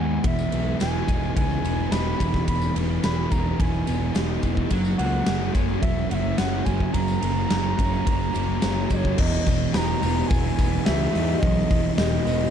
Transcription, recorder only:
Already playing: G#5
0.26 E5
0.81 G#5
1.37 G#5
1.91 B5
2.48 B5
3.04 B5
3.31 A#5
3.60 G#5
4.98 F#5
5.81 E5
6.11 E5 F#5
6.38 F#5
6.65 G#5
6.94 A#5
8.92 C#5 D#5
9.20 D#5
9.73 B5
9.78 A#5
10.28 G#5
10.85 E5
11.39 D#5
11.96 D#5

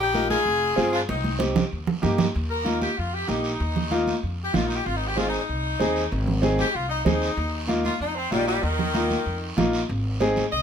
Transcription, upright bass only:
Already playing: A#1
0.46 F1
0.78 G2
1.10 C2
1.72 D#2
2.04 G2
2.35 D#2
2.98 F2
3.29 A#1
3.60 D#2
4.23 F2
4.55 A#1
4.86 G#1
5.49 C2
5.80 D#2
6.12 G#1
6.75 C2
7.06 D#2
7.37 D#2
8.00 F2
8.32 A#1
8.63 D#2
9.26 F2
9.58 A#1
9.89 G#1
10.52 C2

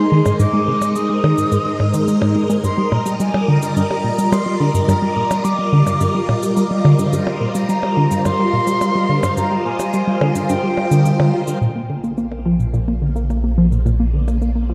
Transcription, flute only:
Already playing: C6
0.40 D6
0.96 D#6
2.65 C6
2.93 A#5
3.21 G#5
3.49 A#5
3.77 A#5
4.32 C6
4.60 A#5
4.89 A#5
5.44 D6
7.70 A#5
8.25 C6
9.37 A#5
9.65 G#5
10.50 G5

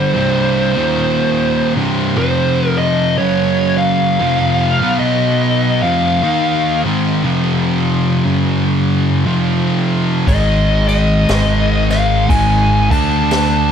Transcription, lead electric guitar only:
Already playing: C5
2.18 C5
2.78 D#5
3.18 C#5
3.78 F5
4.99 D#5
5.83 F5
10.28 D#5
10.88 D#5
11.91 F5
12.29 G#5
12.91 A5

